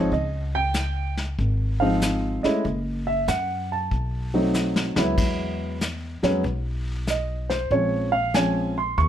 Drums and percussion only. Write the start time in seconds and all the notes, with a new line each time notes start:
0.11 brush sweep, kick
0.74 snare, hi-hat pedal
1.17 snare
1.39 brush sweep, kick
2.02 snare, hi-hat pedal
2.44 snare
2.65 brush sweep, kick
3.28 snare, hi-hat pedal
3.91 brush sweep, kick
4.54 snare, hi-hat pedal
4.76 snare
4.96 snare
5.18 brush sweep, kick, crash
5.81 snare, hi-hat pedal
6.23 snare
6.44 brush sweep, kick
7.07 snare, hi-hat pedal
7.50 snare
7.71 brush sweep, kick
8.34 snare, hi-hat pedal
8.98 brush sweep, kick